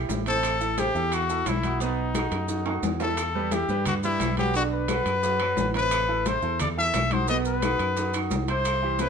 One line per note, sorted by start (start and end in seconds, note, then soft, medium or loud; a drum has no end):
0.00 0.21 E3 medium
0.00 0.21 E4 medium
0.00 0.21 G4 medium
0.09 0.89 A1 medium
0.09 high bongo soft
0.09 low bongo medium
0.09 high conga medium
0.09 low timbale medium
0.09 maracas medium
0.26 0.55 C3 medium
0.26 0.55 C4 medium
0.26 0.81 A4 loud
0.26 0.55 C5 medium
0.26 high bongo soft
0.26 high timbale medium
0.26 maracas soft
0.43 high bongo medium
0.43 high conga soft
0.43 high timbale medium
0.43 claves medium
0.43 maracas medium
0.61 0.75 E3 medium
0.61 0.75 E4 medium
0.61 0.75 A4 medium
0.61 high conga soft
0.61 maracas medium
0.78 0.92 C3 medium
0.78 0.92 C4 medium
0.78 1.16 G4 medium
0.78 0.92 C5 medium
0.78 high bongo medium
0.78 high conga medium
0.78 high timbale medium
0.78 low timbale medium
0.78 maracas medium
0.95 1.43 E2 medium
0.95 1.23 E3 medium
0.95 1.23 E4 medium
0.95 1.23 A4 medium
0.95 high bongo soft
0.95 high conga soft
0.95 maracas soft
1.12 1.50 F#4 medium
1.12 high bongo medium
1.12 high conga soft
1.12 high timbale medium
1.12 claves medium
1.12 maracas medium
1.29 1.57 E3 medium
1.29 1.58 E4 medium
1.29 1.58 A4 medium
1.29 high bongo soft
1.29 high conga soft
1.29 maracas medium
1.46 2.26 B1 medium
1.46 1.82 E4 medium
1.46 high bongo soft
1.46 low bongo medium
1.46 high conga medium
1.46 high timbale medium
1.46 low timbale medium
1.46 claves medium
1.46 maracas medium
1.63 1.78 D#3 medium
1.63 1.78 D#4 medium
1.63 1.78 F#4 medium
1.63 high bongo soft
1.63 high conga medium
1.63 high timbale medium
1.63 maracas soft
1.80 2.09 B2 medium
1.80 2.09 B3 medium
1.80 2.80 D#4 medium
1.80 2.09 B4 medium
1.80 high bongo medium
1.80 high conga soft
1.80 maracas medium
1.98 high conga soft
2.15 2.43 D#3 medium
2.15 2.43 D#4 medium
2.15 2.43 F#4 medium
2.15 high bongo medium
2.15 high conga medium
2.15 high timbale medium
2.15 low timbale medium
2.15 claves medium
2.15 maracas medium
2.32 2.80 F#2 medium
2.32 high bongo medium
2.32 high conga soft
2.32 high timbale medium
2.32 maracas soft
2.48 2.63 D#3 medium
2.48 2.63 D#4 medium
2.48 2.63 F#4 medium
2.48 high bongo medium
2.48 high conga soft
2.48 maracas medium
2.66 2.94 D#3 medium
2.66 2.94 D#4 medium
2.66 2.95 F#4 medium
2.66 high conga soft
2.66 high timbale medium
2.66 claves medium
2.83 3.63 E2 medium
2.83 low bongo medium
2.83 high conga medium
2.83 low timbale medium
2.83 maracas medium
3.00 3.15 E3 medium
3.00 3.15 E4 medium
3.00 3.55 A4 medium
3.00 3.15 E5 medium
3.00 low bongo medium
3.00 high conga soft
3.00 low timbale medium
3.00 maracas soft
3.17 high bongo medium
3.17 high conga soft
3.17 high timbale medium
3.17 claves medium
3.17 maracas medium
3.35 3.49 G3 medium
3.35 3.49 G4 medium
3.35 3.49 B4 medium
3.35 high conga soft
3.51 3.66 E3 medium
3.51 3.66 E4 medium
3.51 3.87 G4 medium
3.51 3.66 E5 medium
3.51 high bongo medium
3.51 high conga medium
3.51 high timbale medium
3.51 low timbale medium
3.51 maracas medium
3.69 4.17 G2 medium
3.69 3.97 G3 medium
3.69 3.97 G4 medium
3.69 3.98 B4 medium
3.69 high bongo soft
3.69 high conga soft
3.69 maracas soft
3.85 3.95 F#4 medium
3.85 high bongo medium
3.85 high conga soft
3.85 low conga medium
3.85 high timbale medium
3.85 claves medium
3.85 maracas medium
4.03 4.31 G3 medium
4.03 4.36 E4 medium
4.03 4.32 G4 medium
4.03 4.32 B4 medium
4.03 high bongo soft
4.03 high conga soft
4.03 maracas medium
4.20 5.00 B1 medium
4.20 high bongo soft
4.20 low bongo medium
4.20 high conga medium
4.20 high timbale medium
4.20 low timbale medium
4.20 claves medium
4.20 maracas medium
4.37 4.52 F#3 medium
4.37 4.52 F#4 medium
4.37 4.54 G4 medium
4.37 4.52 B4 medium
4.37 high bongo soft
4.37 high conga medium
4.37 high timbale medium
4.37 maracas soft
4.54 4.83 D3 medium
4.54 4.83 D4 medium
4.54 4.64 F#4 loud
4.54 4.83 D5 medium
4.54 high bongo medium
4.54 maracas medium
4.72 5.71 B4 medium
4.72 high conga soft
4.88 5.17 F#3 medium
4.88 5.18 F#4 medium
4.88 5.18 B4 medium
4.88 high bongo medium
4.88 high conga medium
4.88 high timbale medium
4.88 low timbale medium
4.88 claves medium
4.88 maracas medium
5.06 5.54 F#2 medium
5.06 high bongo soft
5.06 high conga soft
5.06 high timbale medium
5.06 maracas soft
5.23 5.37 F#3 medium
5.23 5.37 F#4 medium
5.23 5.38 B4 medium
5.23 high bongo medium
5.23 high conga soft
5.23 maracas medium
5.40 5.69 F#3 medium
5.40 5.69 F#4 medium
5.40 5.69 B4 medium
5.40 high bongo soft
5.40 high conga soft
5.40 high timbale medium
5.40 claves medium
5.57 6.37 A1 medium
5.57 high bongo soft
5.57 low bongo medium
5.57 high conga medium
5.57 low timbale medium
5.57 maracas medium
5.74 6.03 C3 medium
5.74 6.03 C4 medium
5.74 6.03 B4 medium
5.74 6.29 B4 loud
5.74 high bongo soft
5.74 high conga soft
5.74 high timbale medium
5.74 maracas soft
5.91 high bongo medium
5.91 high conga soft
5.91 high timbale medium
5.91 claves medium
5.91 maracas medium
6.09 6.23 E3 medium
6.09 6.23 E4 medium
6.09 6.23 A4 medium
6.09 high conga soft
6.26 6.40 C3 medium
6.26 6.40 C4 medium
6.26 6.40 C5 medium
6.26 6.61 C5 medium
6.26 high bongo medium
6.26 high conga medium
6.26 high timbale medium
6.26 low timbale medium
6.26 maracas medium
6.42 6.90 E2 medium
6.42 6.71 E3 medium
6.42 6.71 E4 medium
6.42 6.71 A4 medium
6.42 high bongo soft
6.42 high conga soft
6.42 maracas soft
6.59 6.69 D5 medium
6.59 high bongo medium
6.59 high conga soft
6.59 low conga medium
6.59 high timbale medium
6.59 claves medium
6.59 maracas medium
6.77 7.05 E3 medium
6.77 7.06 E4 medium
6.77 7.06 A4 medium
6.77 7.14 E5 loud
6.77 high bongo soft
6.77 high conga soft
6.94 7.74 B1 medium
6.94 high bongo soft
6.94 low bongo medium
6.94 high conga medium
6.94 high timbale medium
6.94 low timbale medium
6.94 claves medium
6.94 maracas medium
7.11 7.26 D#3 medium
7.11 7.26 D#4 medium
7.11 7.26 F#4 medium
7.11 7.29 C5 medium
7.11 high bongo soft
7.11 high conga medium
7.11 high timbale medium
7.11 maracas soft
7.28 7.57 B2 medium
7.28 7.57 B3 medium
7.28 7.57 B4 medium
7.28 7.37 D#5 loud
7.28 high bongo medium
7.28 maracas medium
7.45 8.18 B4 medium
7.45 high conga soft
7.45 maracas medium
7.62 7.91 D#3 medium
7.62 7.91 D#4 medium
7.62 7.91 F#4 medium
7.62 high bongo medium
7.62 high conga medium
7.62 high timbale medium
7.62 low timbale medium
7.62 claves medium
7.62 maracas medium
7.79 8.28 F#2 medium
7.79 high bongo soft
7.79 high conga soft
7.79 high timbale medium
7.79 maracas soft
7.97 8.11 D#3 medium
7.97 8.11 D#4 medium
7.97 8.12 F#4 medium
7.97 high bongo medium
7.97 high conga soft
7.97 maracas medium
8.14 8.43 D#3 medium
8.14 8.43 D#4 medium
8.14 8.43 F#4 medium
8.14 high bongo soft
8.14 high conga soft
8.14 high timbale medium
8.14 claves medium
8.14 maracas medium
8.31 9.09 C2 medium
8.31 high bongo soft
8.31 low bongo medium
8.31 high conga medium
8.31 low timbale medium
8.31 maracas medium
8.48 8.76 C3 medium
8.48 8.77 C4 medium
8.48 8.77 C5 medium
8.48 9.03 C5 loud
8.48 high bongo soft
8.48 high conga soft
8.48 high timbale medium
8.48 maracas soft
8.65 high bongo medium
8.65 high conga soft
8.65 high timbale medium
8.65 claves medium
8.65 maracas medium
8.82 8.97 E3 medium
8.82 8.97 E4 medium
8.82 8.97 G4 medium
8.82 high conga soft
8.99 9.09 C3 medium
8.99 9.09 C4 medium
8.99 9.09 B4 medium
8.99 9.09 C5 medium
8.99 high bongo medium
8.99 high conga medium
8.99 high timbale medium
8.99 low timbale medium
8.99 maracas medium